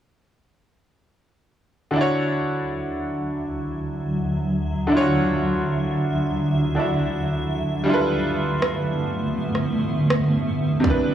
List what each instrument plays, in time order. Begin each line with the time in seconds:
1.91 grand piano D3 D4
1.95 ambient pad D2 D3 F#3 E5, grand piano E4 F#4
2.01 grand piano C#5
4.87 grand piano D3 D4
4.92 grand piano E4 F4
4.97 grand piano C#5
5.01 grand piano F#4
6.75 grand piano D3 D4 E4 F#4
6.80 grand piano E5
7.84 ambient pad G2 F3 A3 B3, grand piano G3 D4 E4
7.88 ambient pad D3, grand piano F4 A4
7.93 grand piano B4
8.62 cross-stick
9.55 cross-stick
10.10 cross-stick
10.80 grand piano C3 G3
10.84 grand piano D4 E4, kick
10.90 grand piano B4